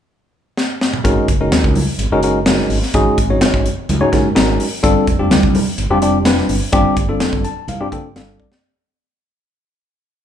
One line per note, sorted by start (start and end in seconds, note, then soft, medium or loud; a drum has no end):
0.57 snare medium
0.81 snare medium
0.94 mid tom medium
1.04 1.15 G#1 loud
1.04 1.27 G#3 loud
1.04 1.27 C#4 medium
1.04 1.27 D#4 medium
1.04 1.27 F#4 medium
1.04 1.27 A#4 loud
1.04 kick loud
1.04 closed hi-hat medium
1.04 muted conga soft
1.28 1.49 F#1 medium
1.28 kick medium
1.28 closed hi-hat medium
1.28 muted conga soft
1.40 1.77 G#3 medium
1.40 1.78 C#4 medium
1.40 1.77 D#4 medium
1.40 1.77 F#4 medium
1.40 1.78 A#4 medium
1.51 1.62 D#2 medium
1.51 snare loud
1.51 closed hi-hat medium
1.51 high conga medium
1.64 1.85 C#2 medium
1.64 kick medium
1.75 open hi-hat medium
1.75 high conga medium
1.98 2.09 G#1 medium
1.98 2.06 F#4 soft
1.98 2.06 G#4 soft
1.98 closed hi-hat medium
1.98 muted conga soft
2.10 2.62 F#1 medium
2.10 2.19 G#3 loud
2.10 2.19 C#4 medium
2.10 2.19 D#4 medium
2.10 2.19 F#4 medium
2.10 2.19 A#4 loud
2.23 2.39 G#3 medium
2.23 2.39 C#4 medium
2.23 2.39 D#4 medium
2.23 2.39 F#4 medium
2.23 2.39 A#4 medium
2.23 closed hi-hat medium
2.46 2.77 G#3 medium
2.46 2.77 C#4 medium
2.46 2.77 D#4 medium
2.46 2.77 F#4 medium
2.46 2.77 A#4 medium
2.46 snare loud
2.46 closed hi-hat medium
2.46 muted conga soft
2.46 high conga medium
2.58 snare soft
2.70 2.81 G#1 medium
2.70 open hi-hat medium
2.83 snare soft
2.94 3.05 G#1 loud
2.94 3.17 G#3 loud
2.94 3.17 C#4 medium
2.94 3.17 D#4 medium
2.94 3.17 F#4 medium
2.94 3.17 G#4 loud
2.94 kick loud
2.94 closed hi-hat medium
2.94 muted conga soft
3.18 3.41 G#1 medium
3.18 kick medium
3.18 closed hi-hat medium
3.18 muted conga soft
3.30 3.67 G#3 medium
3.30 3.67 C#4 medium
3.30 3.67 D#4 medium
3.30 3.67 F#4 medium
3.30 3.67 C#5 medium
3.41 3.52 F#1 medium
3.41 snare loud
3.41 closed hi-hat medium
3.41 high conga medium
3.54 3.64 G#1 medium
3.54 kick medium
3.66 closed hi-hat medium
3.78 muted fretless electric bass stroke soft
3.89 4.00 C#2 loud
3.89 3.95 F#4 soft
3.89 3.95 A#4 soft
3.89 closed hi-hat medium
3.89 muted conga soft
3.89 high conga medium
4.01 4.31 G#2 medium
4.01 4.08 G#3 loud
4.01 4.08 C#4 medium
4.01 4.08 D#4 loud
4.01 4.08 F#4 medium
4.01 4.08 C#5 loud
4.12 4.27 G#3 medium
4.12 4.28 C#4 medium
4.12 4.27 D#4 medium
4.12 4.27 F#4 medium
4.12 4.28 A#4 medium
4.12 kick medium
4.12 snare soft
4.12 closed hi-hat medium
4.12 low conga medium
4.35 4.57 G#1 medium
4.35 4.66 G#3 medium
4.35 4.66 C#4 medium
4.35 4.66 D#4 medium
4.35 4.66 F#4 medium
4.35 4.66 A#4 medium
4.35 snare loud
4.35 closed hi-hat medium
4.35 muted conga soft
4.35 high conga medium
4.60 open hi-hat medium
4.83 4.94 G1 loud
4.83 5.06 G3 loud
4.83 5.06 C4 medium
4.83 5.06 D4 medium
4.83 5.06 F4 medium
4.83 5.06 A4 loud
4.83 kick loud
4.83 closed hi-hat medium
4.83 muted conga soft
5.07 5.28 F1 medium
5.07 kick medium
5.07 closed hi-hat medium
5.07 muted conga soft
5.19 5.56 G3 medium
5.19 5.56 C4 medium
5.19 5.56 D4 medium
5.19 5.56 F4 medium
5.19 5.56 G4 medium
5.31 5.42 D2 medium
5.31 snare loud
5.31 closed hi-hat medium
5.31 high conga medium
5.43 5.63 C2 medium
5.43 kick medium
5.55 open hi-hat medium
5.55 high conga medium
5.78 5.89 G1 medium
5.78 5.84 F4 soft
5.78 5.85 G4 soft
5.78 closed hi-hat medium
5.78 muted conga soft
5.90 6.41 F1 medium
5.90 5.98 G3 loud
5.90 5.98 C4 loud
5.90 5.98 D4 medium
5.90 5.98 F4 loud
5.90 5.98 G4 loud
6.02 6.17 G3 medium
6.02 6.17 C4 medium
6.02 6.17 D4 medium
6.02 6.17 F4 medium
6.02 6.17 G4 medium
6.02 closed hi-hat medium
6.25 6.56 G3 medium
6.25 6.56 C4 medium
6.25 6.56 D4 medium
6.25 6.56 F4 medium
6.25 6.56 B4 medium
6.25 snare loud
6.25 closed hi-hat medium
6.25 muted conga soft
6.25 high conga medium
6.37 snare soft
6.49 6.60 G1 medium
6.49 open hi-hat medium
6.73 6.84 G1 loud
6.73 6.95 G3 loud
6.73 6.95 C4 loud
6.73 6.95 D4 medium
6.73 6.95 F4 medium
6.73 6.95 G4 loud
6.73 kick loud
6.73 closed hi-hat medium
6.73 muted conga soft
6.97 7.20 G1 medium
6.97 kick medium
6.97 closed hi-hat medium
6.97 muted conga soft
7.09 7.46 G3 medium
7.09 7.46 C4 medium
7.09 7.46 D4 medium
7.09 7.46 F4 medium
7.09 7.46 A4 medium
7.20 7.31 F1 medium
7.20 snare loud
7.20 closed hi-hat medium
7.20 high conga medium
7.33 7.43 G1 medium
7.33 kick medium
7.45 7.67 A5 medium
7.45 closed hi-hat medium
7.57 muted fretless electric bass stroke soft
7.68 7.78 C2 medium
7.68 7.74 F4 soft
7.68 7.74 C5 soft
7.68 7.90 F5 medium
7.68 closed hi-hat medium
7.68 muted conga soft
7.68 high conga medium
7.81 8.11 G2 medium
7.81 7.88 G3 loud
7.81 7.88 C4 medium
7.81 7.88 D4 medium
7.81 7.88 F4 medium
7.81 7.88 G4 loud
7.92 8.07 G3 medium
7.92 8.07 C4 medium
7.92 8.07 D4 medium
7.92 8.07 F4 medium
7.92 8.07 A4 medium
7.92 8.14 G5 medium
7.92 kick medium
7.92 closed hi-hat medium
7.92 low conga medium
8.16 8.36 G1 medium
8.16 8.46 G3 medium
8.16 8.46 C4 medium
8.16 8.46 D4 medium
8.16 8.46 F4 medium
8.16 8.46 A4 medium
8.16 8.38 F5 medium
8.16 snare loud
8.16 closed hi-hat medium
8.16 muted conga soft
8.16 high conga medium
8.40 8.62 D5 medium
8.40 kick medium
8.52 snare medium